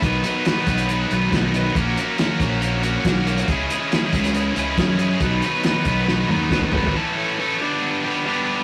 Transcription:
<<
  \new Staff \with { instrumentName = "Distorted electric guitar" } { \time 4/4 \key b \mixolydian \tempo 4 = 139 <b, dis fis b dis' b'>8 <b, dis fis b dis' b'>8 <b, dis fis b dis' b'>8 <b, dis fis b dis' b'>8 <b, dis fis b dis' b'>8 <b, dis fis b dis' b'>8 <b, dis fis b dis' b'>8 <b, dis fis b dis' b'>8 | <ais cis' fis' ais'>8 <ais cis' fis' ais'>8 <ais cis' fis' ais'>8 <ais cis' fis' ais'>8 <ais cis' fis' ais'>8 <ais cis' fis' ais'>8 <ais cis' fis' ais'>8 <ais cis' fis' ais'>8 | <cis gis cis' e' gis'>8 <cis gis cis' e' gis'>8 <cis gis cis' e' gis'>8 <cis gis cis' e' gis'>8 <cis gis cis' e' gis'>8 <cis gis cis' e' gis'>8 <cis gis cis' e' gis'>8 <cis gis cis' e' gis'>8 | <b, dis fis b dis' b'>8 <b, dis fis b dis' b'>8 <b, dis fis b dis' b'>8 <b, dis fis b dis' b'>8 <b, dis fis b dis' b'>8 <b, dis fis b dis' b'>8 <b, dis fis b dis' b'>8 <b, dis fis b dis' b'>8 |
<a, e a cis' a'>8 <a cis' a'>8 <a, e a cis' a'>8 <g, d g b d' g'>4 <g b d' g'>8 <g b d' g'>4 | }
  \new Staff \with { instrumentName = "Fingered electric bass" } { \clef bass \time 4/4 \key b \mixolydian b,,8 r4 b,,4 b,,8 b,,4 | ais,,8 r4 ais,,4. b,,4 | cis,8 r4 cis,4 cis,8 fis,4 | b,,8 r4 b,,4 dis,8 fis,,8 gis,,8 |
r1 | }
  \new DrumStaff \with { instrumentName = "Drums" } \drummode { \time 4/4 <hh bd>8 hh8 <hh sn>8 <hh bd>16 hh16 hh8 hh8 <hh bd sn>8 hh8 | <hh bd>8 hh8 <hh sn>8 <hh bd>8 hh8 hh8 <hh bd sn>8 hh16 hh16 | <hh bd>8 hh8 <hh sn>8 <hh bd>16 <hh sn>16 hh8 hh8 <hh bd sn>8 hh8 | <hh bd>8 hh8 <hh sn>8 <hh bd>8 sn8 toml8 <bd sn>16 bd16 tomfh16 tomfh16 |
r4 r4 r4 r4 | }
>>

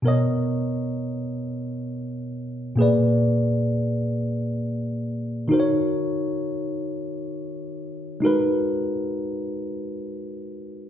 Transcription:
\new Staff \with { instrumentName = "Tine electric piano" } { \time 6/8 \key b \major \tempo 4. = 44 <b, b ais' cis'' dis''>2. | <ais, ais gis' b' d''>2. | <dis dis' fis' ais' bis' cis''>2. | <gis dis' fis' ais' b'>2. | }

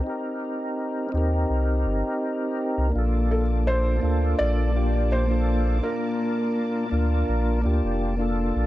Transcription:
<<
  \new Staff \with { instrumentName = "String machine" } { \time 4/4 \key bes \major \tempo 4 = 83 r1 | <bes a'' d'''>1~ | <bes a'' d'''>1 | }
  \new Staff \with { instrumentName = "Felt piano" } { \time 4/4 \key bes \major r1 | r8 a'8 c''4 d''4 c''4 | bes'2 r2 | }
  \new Staff \with { instrumentName = "Tonewheel organ" } { \time 4/4 \key bes \major <c' ees' g' bes'>4. <c' ees' g' bes'>2~ <c' ees' g' bes'>8 | <bes d' f' a'>4. <bes d' f' a'>4 <bes d' f' g'>8. <bes d' f' a'>8. | <bes d' f' bes'>4. <bes d' f' bes'>4 <bes d' f' g'>8. <bes d' f' a'>8. | }
  \new Staff \with { instrumentName = "Sub bass" } { \clef bass \time 4/4 \key bes \major r4. ees,8 c,8 g,,16 r4 c,16 | bes,,4. d,8 bes,,2 | r4. d,8 bes,,8 d,16 f,,4 bes,,16 | }
>>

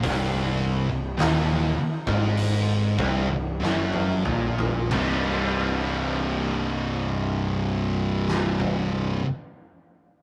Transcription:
<<
  \new Staff \with { instrumentName = "Overdriven electric guitar" } { \clef bass \time 4/4 \key c \minor \tempo 4 = 45 c,8. c,16 ees,8 r16 aes,8. c,16 c,16 fis,8 bes,8 | <c, g, c g ees'>1 | }
  \new Staff \with { instrumentName = "Distorted electric guitar" } { \clef bass \time 4/4 \key c \minor c,8. c,16 ees,8 r16 aes,8. c,16 c,16 fis,8 bes,8 | <c, g, c>1 | }
  \new Staff \with { instrumentName = "Distorted electric guitar" } { \clef bass \time 4/4 \key c \minor c,8. c,16 ees,8 r16 aes,8. c,16 c,16 fis,8 bes,8 | <c, g, c>1 | }
  \new Staff \with { instrumentName = "Picked electric bass" } { \clef bass \time 4/4 \key c \minor c,,8. c,,16 ees,,8 r16 aes,,8. c,,16 c,,16 fis,,8 bes,,8 | c,,1 | }
  \new DrumStaff \with { instrumentName = "Drums" } \drummode { \time 4/4 <hho bd>4 <hho sn>8. bd16 hho8 bd8 sn16 tommh16 toml16 tomfh16 | <cymc bd>4 r4 r8 sn16 bd16 r4 | }
>>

